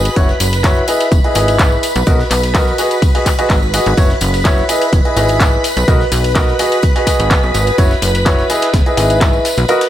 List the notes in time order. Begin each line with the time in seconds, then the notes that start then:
Already playing: F#4 G#4 B4 D#5 B5
0.05 closed hi-hat, tambourine
0.16 F#1 E4 F#4 B4 C#5, kick, closed hi-hat, tambourine
0.29 snare, tambourine
0.40 F#1, closed hi-hat, open hi-hat, tambourine
0.53 snare, closed hi-hat, tambourine
0.64 E4 F#4 B4 C#5, kick, snare, clap, closed hi-hat, tambourine
0.76 snare, tambourine
0.88 E4 G#4 B4 D#5, closed hi-hat, open hi-hat, tambourine
1.00 snare, closed hi-hat, tambourine
1.12 E1, kick, closed hi-hat, tambourine
1.24 E4 G#4 B4 D#5, closed hi-hat, tambourine
1.35 G#1 E4 G#4 B4 D#5, closed hi-hat, open hi-hat, tambourine
1.48 closed hi-hat, tambourine
1.59 kick, snare, clap, closed hi-hat, tambourine
1.72 tambourine
1.83 closed hi-hat, open hi-hat, tambourine
1.96 B1, closed hi-hat, tambourine
2.07 B1 F#4 A#4 B4 D#5, kick, closed hi-hat, tambourine
2.20 snare, tambourine
2.31 B1, clap, closed hi-hat, open hi-hat, tambourine
2.43 snare, closed hi-hat, tambourine
2.54 F#4 A#4 B4 D#5, kick, snare, clap, closed hi-hat, tambourine
2.67 snare, tambourine
2.78 F#4 G#4 B4 D#5, closed hi-hat, open hi-hat, tambourine
2.91 closed hi-hat, tambourine
3.02 kick, closed hi-hat, tambourine
3.15 F#4 G#4 B4 D#5, open hi-hat, tambourine
3.26 kick, clap, closed hi-hat, open hi-hat, tambourine
3.39 F#4 G#4 B4 D#5, closed hi-hat, tambourine
3.50 G#1, kick, snare, clap, closed hi-hat, tambourine
3.62 tambourine
3.74 F#4 G#4 B4 D#5, closed hi-hat, open hi-hat, tambourine
3.86 G#1, closed hi-hat, tambourine
3.97 F#1 E4 F#4 B4 C#5, kick, closed hi-hat, tambourine
4.10 snare, tambourine
4.21 F#1, closed hi-hat, open hi-hat, tambourine
4.34 snare, closed hi-hat, tambourine
4.45 E4 F#4 B4 C#5, kick, snare, clap, closed hi-hat, tambourine
4.58 snare, tambourine
4.69 E4 G#4 B4 D#5, closed hi-hat, open hi-hat, tambourine
4.81 snare, closed hi-hat, tambourine
4.93 E1, kick, closed hi-hat, tambourine
5.05 E4 G#4 B4 D#5, closed hi-hat, tambourine
5.16 G#1 E4 G#4 B4 D#5, closed hi-hat, open hi-hat, tambourine
5.28 closed hi-hat, tambourine
5.40 kick, snare, clap, closed hi-hat, tambourine
5.53 tambourine
5.64 closed hi-hat, open hi-hat, tambourine
5.77 B1, closed hi-hat, tambourine
5.88 B1 F#4 A#4 B4 D#5, kick, closed hi-hat, tambourine
6.01 snare, tambourine
6.12 B1, closed hi-hat, open hi-hat, tambourine
6.24 snare, closed hi-hat, tambourine
6.35 F#4 A#4 B4 D#5, kick, snare, clap, closed hi-hat, tambourine
6.48 snare, tambourine
6.59 F#4 G#4 B4 D#5, closed hi-hat, open hi-hat, tambourine
6.72 closed hi-hat, tambourine
6.82 kick, closed hi-hat, tambourine
6.96 F#4 G#4 B4 D#5, open hi-hat, tambourine
7.07 F#4 G#4 B4 D#5, kick, closed hi-hat, open hi-hat, tambourine
7.20 G#1, closed hi-hat, tambourine
7.31 kick, snare, clap, closed hi-hat, tambourine
7.43 B1, tambourine
7.54 G#1, closed hi-hat, open hi-hat, tambourine
7.67 closed hi-hat, tambourine
7.78 F#1 E4 F#4 B4 C#5, kick, closed hi-hat, tambourine
7.91 snare, tambourine
8.02 F#1, closed hi-hat, open hi-hat, tambourine
8.15 snare, closed hi-hat, tambourine
8.26 E4 F#4 B4 C#5, kick, snare, clap, closed hi-hat, tambourine
8.38 snare, tambourine
8.50 E4 G#4 B4 D#5, snare, closed hi-hat, open hi-hat, tambourine
8.62 snare, closed hi-hat, tambourine
8.74 E1, kick, snare, closed hi-hat, tambourine
8.86 E4 G#4 B4 D#5, closed hi-hat, tambourine
8.97 G#1 E4 G#4 B4 D#5, closed hi-hat, open hi-hat, tambourine
9.10 closed hi-hat, tambourine
9.21 kick, snare, clap, closed hi-hat, tambourine
9.33 tambourine
9.45 snare, closed hi-hat, open hi-hat, tambourine
9.57 B1, closed hi-hat, tambourine
9.68 F#4 A#4 B4 D#5, closed hi-hat, tambourine
9.81 snare, closed hi-hat, tambourine